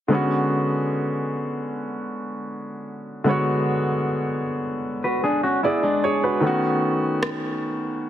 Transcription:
0.08 grand piano D3 G#3 B3
0.13 grand piano C#4 F#4
3.24 grand piano D3 G#3 B3
3.29 grand piano F#4 C#5
5.04 clean electric guitar F#4 B4
5.24 clean electric guitar D4 G#4
5.43 clean electric guitar C#4 F#4
5.63 clean electric guitar B3 E4, grand piano G#4 D5
5.83 clean electric guitar G#3 D4
6.04 grand piano G#4 C#5
6.24 grand piano F#4 B4
6.40 grand piano D#3 A3 B3
6.45 grand piano C#4 F#4
7.23 cross-stick

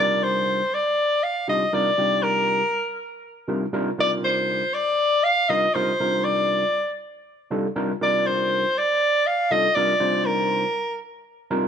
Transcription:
Already playing: tine electric piano C3 D4 A#4, soprano saxophone D5
0.00 tine electric piano G3 D#4 F4
0.24 soprano saxophone C5
0.74 soprano saxophone D5
1.23 soprano saxophone F5
1.48 tine electric piano C3 G3 D4 D#4 F4 G4, soprano saxophone D#5
1.73 tine electric piano C3 G3 D4 D#4 F4 A#4, soprano saxophone D5
1.98 tine electric piano C3 G3 D4 D#4 F4 G4
2.23 soprano saxophone A#4
3.48 tine electric piano C3 G3 D4 D#4 F4 A#4
3.73 tine electric piano C3 G3 D4 D#4 F4 A#4
3.98 tine electric piano C3 G3 D4 D#4 F4 A#4, soprano saxophone D5
4.24 soprano saxophone C5
4.74 soprano saxophone D5
5.24 soprano saxophone F5
5.49 tine electric piano C3 G3 D4 D#4 F4 A#4, soprano saxophone D#5
5.75 tine electric piano C3 G3 D4 D#4 F4 A#4, soprano saxophone C5
6.00 tine electric piano C3 G3 D4 D#4 F4 A#4
6.24 soprano saxophone D5
7.51 tine electric piano C3 G3 D4 D#4 F4 A4
7.75 tine electric piano C3 G3 D4 D#4 F4 A#4
8.01 tine electric piano C3 G3 D4 D#4 F4 A#4, soprano saxophone D5
8.27 soprano saxophone C5
8.78 soprano saxophone D5
9.27 soprano saxophone F5
9.51 tine electric piano C3 G3 D4 D#4 F4 A4, soprano saxophone D#5
9.75 tine electric piano C3 G3 D4 D#4 F4 A#4, soprano saxophone D5
10.00 tine electric piano C3 G3 D4 D#4 F4 C5
10.26 soprano saxophone A#4
11.51 tine electric piano C3 G3 D4 D#4 F4 A#4

